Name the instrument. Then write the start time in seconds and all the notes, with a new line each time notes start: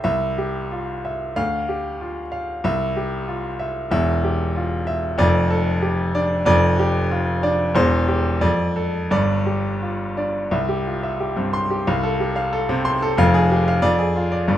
grand piano
0.04 C2 E5
0.38 G4
0.71 F4
1.05 E5
1.36 D2 F5
1.69 G4
2.01 F4
2.32 F5
2.64 C2 E5
2.97 G4
3.28 F4
3.59 E5
3.91 E1 E2 E5
4.24 G4
4.56 F4
4.87 E5
5.18 F1 F2 D5
5.51 A4
5.82 G4
6.15 D4 D5
6.45 F1 F2 D5
6.79 G4
7.11 F4
7.43 D4 D5
7.75 E1 E2 C5
8.08 G4
8.41 F2 D5
8.76 A4
9.10 G1 G2 D5
9.46 G4
9.82 F4
10.17 D4 D5
10.51 C2 E5
10.69 G4
10.86 F4
11.03 E5
11.20 G4
11.36 G2 C4
11.53 C6
11.71 G4
11.87 C2 F5
12.03 A4
12.20 G4
12.36 F5
12.53 A4
12.69 C3 C4
12.85 C6
13.02 A4
13.17 F1 F2 F5
13.34 G#4
13.51 G4
13.68 F5
13.82 F2 D5
13.99 G#4
14.16 F4
14.32 D5
14.48 G1 G2 D5